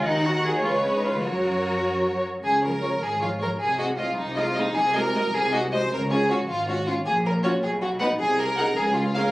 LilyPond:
<<
  \new Staff \with { instrumentName = "Violin section" } { \time 6/8 \key fis \major \tempo 4. = 104 fis''4. cis''4. | cis''2~ cis''8 r8 | \key des \major r8 des''8 des''8 r8 des''8 des''8 | r8 ees''8 ees''8 r8 ees''8 ees''8 |
r8 ees''8 ees''8 r8 ees''8 ees''8 | r8 des''8 des''8 r8 des''8 des''8 | \key b \lydian r4 cis''16 r4 r16 fis''16 r16 | r4 fis''16 r4 r16 eis''16 r16 | }
  \new Staff \with { instrumentName = "Violin section" } { \time 6/8 \key fis \major ais'4. b'4. | ais'2~ ais'8 r8 | \key des \major aes'8 bes'4 aes'8 f'8 bes'8 | aes'8 ges'8 f'8 ees'8 f'8 ees'8 |
aes'8 bes'4 aes'8 ges'8 c''8 | bes'8 aes'8 ges'8 f'8 ges'8 f'8 | \key b \lydian gis'8 ais'8 fis'8 gis'8 fis'8 b'8 | gis'8 ais'4 gis'8 eis'8 ais'8 | }
  \new Staff \with { instrumentName = "Viola section" } { \time 6/8 \key fis \major dis4. gis4. | fis2~ fis8 r8 | \key des \major r8 <f aes'>8 <f aes'>8 r8 <f aes'>8 <f aes'>8 | r8 <aes aes'>8 <aes aes'>8 r8 <aes aes'>8 <aes aes'>8 |
r8 <aes ges'>8 <aes ges'>8 r8 <aes ges'>8 <aes ges'>8 | r8 <des' f'>8 <des' f'>8 r8 <des' f'>8 <des' f'>8 | \key b \lydian r4 <cis' eis'>16 r4 r16 <b dis'>16 r16 | r4 <dis' gis'>16 r4 r16 <cis' gis'>16 r16 | }
  \new Staff \with { instrumentName = "Cello section" } { \clef bass \time 6/8 \key fis \major dis'8 fis'8 gis'8 eis'8 cis'16 dis'16 eis'8 | fis'2~ fis'8 r8 | \key des \major des4. aes,4. | c4. c4. |
c4. c4. | des4. aes,4. | \key b \lydian ais,4. b,4. | bis,4. cis4. | }
  \new Staff \with { instrumentName = "Double bass section" } { \clef bass \time 6/8 \key fis \major dis,4. cis,4. | fis,2~ fis,8 r8 | \key des \major des,4. aes,,4. | c,4. c,4. |
c,4. c,4. | des,4. aes,,4. | \key b \lydian ais,,4. b,,4. | bis,,4. cis,4. | }
>>